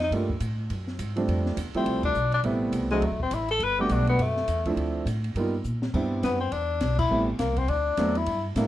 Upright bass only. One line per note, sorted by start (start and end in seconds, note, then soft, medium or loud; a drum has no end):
0.00 0.10 F2 medium
0.11 0.40 G2 medium
0.40 0.69 A2 medium
0.70 0.98 F#2 medium
0.99 1.27 G#2 medium
1.28 1.56 F2 medium
1.57 1.73 E2 medium
1.74 muted upright bass stroke soft
1.86 2.14 C2 medium
2.15 2.43 B1 medium
2.43 2.71 A1 medium
2.72 3.00 C2 medium
3.01 3.13 D2 medium
3.11 3.20 C2 medium
3.21 3.30 A1 medium
3.31 3.59 A1 medium
3.60 3.89 G1 medium
3.90 4.18 B1 medium
4.19 4.47 F#2 medium
4.48 4.76 E2 medium
4.76 5.05 D2 medium
5.05 5.34 A2 medium
5.35 5.64 G2 medium
5.64 5.93 A#2 medium
5.94 6.22 G2 medium
6.23 6.51 F#2 loud
6.52 6.80 E2 medium
6.81 7.08 B1 medium
7.09 7.38 A1 medium
7.39 7.67 C2 medium
7.68 7.97 D2 medium
7.98 8.26 E2 medium
8.26 8.55 G2 medium
8.56 8.67 A2 medium